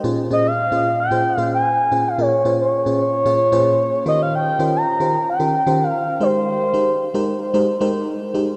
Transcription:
<<
  \new Staff \with { instrumentName = "Analog synth lead" } { \time 4/4 \key bes \dorian \tempo 4 = 112 r8 ees''16 f''4 g''4 aes''4 f''16 | des''8. des''2~ des''8. ees''16 f''16 | g''8. bes''4 g''4 f''8. c''8~ | c''4. r2 r8 | }
  \new Staff \with { instrumentName = "FM electric piano" } { \time 4/4 \key bes \dorian <bes, des' f' g' aes' c'' ees''>16 r16 <bes, des' f' aes' c''>16 r8 <bes, des' f' aes' c''>16 r8 <bes, des' f' aes' c''>16 r16 <bes, des' f' aes' c''>8 r8 <bes, des' f' aes' c''>16 r16 | <bes, des' f' aes' bes'>16 r16 <bes, des' f' aes' c''>16 r8 <bes, des' f' aes' c''>16 r8 <bes, des' f' aes' des''>16 r16 <bes, des' f' aes' c''>8 r8 <ees des' f' g' bes' c''>8~ | <ees des' f' g' bes' c''>16 r16 <ees des' f' g' bes' c''>16 r8 <ees des' f' g' bes' c''>16 r8 <ees des' f' g' bes' c''>16 r16 <ees des' f' g' bes' c''>8 r8 <aes ees' g' bes' c''>8~ | <aes ees' g' bes' c''>16 r16 <aes ees' g' bes' c''>16 r8 <aes ees' g' bes' c''>16 r8 <aes ees' g' bes' c''>16 r16 <aes ees' g' bes' c''>8 r8 <aes ees' g' bes' c''>16 r16 | }
>>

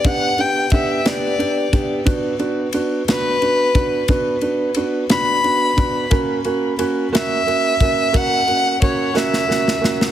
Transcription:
<<
  \new Staff \with { instrumentName = "Violin" } { \time 6/8 \key b \minor \tempo 4. = 59 fis''8 g''8 e''8 d''4 r8 | r4. b'4. | r4. b''4. | r4. e''4. |
fis''4 cis''8 e''4 r8 | }
  \new Staff \with { instrumentName = "Felt piano" } { \time 6/8 \key b \minor <b d' g'>8 <b d' g'>8 <b d' g'>8 <b d' g'>8 <b d' g'>8 <b d' g'>8 | <b d' fis'>8 <b d' fis'>8 <b d' fis'>8 <b d' fis'>8 <b d' fis'>8 <b d' fis'>8 | <b d' fis'>8 <b d' fis'>8 <b d' fis'>8 <b d' fis'>8 <b d' fis'>8 <b d' fis'>8 | <ais cis' fis'>8 <ais cis' fis'>8 <ais cis' fis'>8 <ais cis' fis'>8 <ais cis' fis'>8 <ais cis' fis'>8 |
<ais cis' fis'>8 <ais cis' fis'>8 <ais cis' fis'>8 <ais cis' fis'>8 <ais cis' fis'>8 <ais cis' fis'>8 | }
  \new DrumStaff \with { instrumentName = "Drums" } \drummode { \time 6/8 <bd cymr>8 cymr8 <bd cymr>8 <cymr sn>8 cymr8 <bd cymr>8 | <bd cymr>8 cymr8 cymr8 <cymr sn>8 cymr8 <bd cymr>8 | <bd cymr>8 cymr8 cymr8 <cymr sn>8 cymr8 <bd cymr>8 | <bd cymr>8 cymr8 cymr8 <cymr sn>8 cymr8 <bd cymr>8 |
<bd cymr>8 cymr8 <bd cymr>8 sn16 sn16 sn16 sn16 sn16 sn16 | }
>>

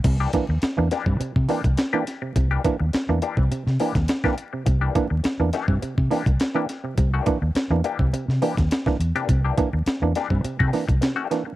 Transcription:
<<
  \new Staff \with { instrumentName = "Clean electric guitar" } { \time 4/4 \key c \mixolydian \tempo 4 = 104 r16 <e bes d' g'>16 r4 <e bes d' g'>16 r8. <e bes d' g'>16 r8 <e bes d' g'>16 r8 | r16 <e bes d' g'>16 r4 <e bes d' g'>16 r8. <e bes d' g'>16 r8 <e bes d' g'>16 r8 | r16 <e bes d' g'>16 r4 <e bes d' g'>16 r8. <e bes d' g'>16 r8 <e bes d' g'>16 r8 | r16 <e bes d' g'>16 r4 <e bes d' g'>16 r8. <e bes d' g'>16 r4 <e bes d' g'>16 |
r16 <e bes d' g'>16 r4 <e bes d' g'>16 r8 <e bes d' g'>16 r8. <e bes d' g'>16 r8 | }
  \new Staff \with { instrumentName = "Clav" } { \time 4/4 \key c \mixolydian c16 r16 <e bes d'>16 r8 <e bes d'>16 r16 c16 c16 r16 <e bes d'>16 <bes d'>16 r16 <e bes d'>16 r16 c16 | c16 r16 <e bes d'>16 <bes d'>16 r16 <e bes d'>16 r16 c16 c16 r16 <e bes d'>16 <bes d'>16 r16 <e bes d'>16 r16 c16 | c16 r16 <e bes d'>16 <bes d'>16 r16 <e bes d'>16 r16 c16 c16 r16 <e bes d'>16 <bes d'>16 r16 <e bes d'>16 r16 c16 | c16 r16 <e bes d'>16 <bes d'>16 r16 <e bes d'>16 r16 c16 c16 r16 <e bes d'>16 <bes d'>16 r16 <e bes d'>16 r16 c16 |
c16 r16 <e bes d'>16 <bes d'>16 r16 <e bes d'>16 r16 c16 c16 r16 <e bes d'>16 <bes d'>16 c16 r16 <e bes d'>16 <bes d'>16 | }
  \new Staff \with { instrumentName = "Fingered electric bass" } { \clef bass \time 4/4 \key c \mixolydian c,8 r16 ees,16 r16 e,16 r16 g,16 r16 c16 r16 c,16 r4 | c,8 r16 ees,16 r16 e,16 r16 c,16 r16 c16 r16 ees,16 r4 | c,8 r16 ees,16 r16 e,16 r16 g,16 r16 c16 r16 c,16 r4 | c,8 r16 ees,16 r16 e,16 r16 c,16 r16 c16 r16 ees,16 r8 e,16 r16 |
c,8 r16 ees,16 r16 e,16 r16 g,16 r16 c16 r16 c,16 r4 | }
  \new DrumStaff \with { instrumentName = "Drums" } \drummode { \time 4/4 <cymc hh bd>8 <hh bd>8 <hh sn>8 <hh sn>16 bd16 hh16 bd16 <hho sn>16 <hh bd>16 <hh sn>8 <hh sn>8 | <hh bd>8 <hh bd>8 <hh sn>8 hh16 bd16 hh16 sn16 hho16 <hh bd sn>16 <hh sn>16 <bd sn>16 hh8 | <hh bd>8 <hh bd>8 <hh sn>8 <hh sn>16 bd16 hh16 bd16 <hho sn>16 <hh bd>16 <hh sn>8 <hh sn>8 | <hh bd>8 <hh bd>8 <hh sn>8 hh16 bd16 hh16 sn16 hho16 <hh bd sn>16 <hh sn>16 <bd sn>16 hh16 hh16 |
<hh bd>8 <hh bd>8 <hh sn>8 <hh sn>16 bd16 hh16 bd16 <hho sn>16 <hh bd>16 <hh sn>8 <hh sn>8 | }
>>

